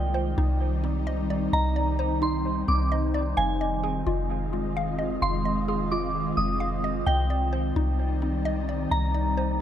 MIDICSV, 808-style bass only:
0, 0, Header, 1, 2, 480
1, 0, Start_track
1, 0, Key_signature, -3, "minor"
1, 0, Tempo, 461538
1, 1589, Time_signature, 4, 2, 24, 8
1, 9999, End_track
2, 0, Start_track
2, 0, Title_t, "808-style bass"
2, 0, Program_c, 0, 38
2, 0, Note_on_c, 0, 36, 114
2, 362, Note_off_c, 0, 36, 0
2, 391, Note_on_c, 0, 36, 114
2, 1549, Note_off_c, 0, 36, 0
2, 1589, Note_on_c, 0, 36, 115
2, 2748, Note_off_c, 0, 36, 0
2, 2790, Note_on_c, 0, 36, 103
2, 3481, Note_off_c, 0, 36, 0
2, 3511, Note_on_c, 0, 29, 111
2, 4201, Note_off_c, 0, 29, 0
2, 4229, Note_on_c, 0, 29, 110
2, 5388, Note_off_c, 0, 29, 0
2, 5430, Note_on_c, 0, 29, 115
2, 6588, Note_off_c, 0, 29, 0
2, 6628, Note_on_c, 0, 29, 104
2, 7320, Note_off_c, 0, 29, 0
2, 7348, Note_on_c, 0, 36, 115
2, 8040, Note_off_c, 0, 36, 0
2, 8070, Note_on_c, 0, 36, 112
2, 9228, Note_off_c, 0, 36, 0
2, 9270, Note_on_c, 0, 36, 108
2, 9999, Note_off_c, 0, 36, 0
2, 9999, End_track
0, 0, End_of_file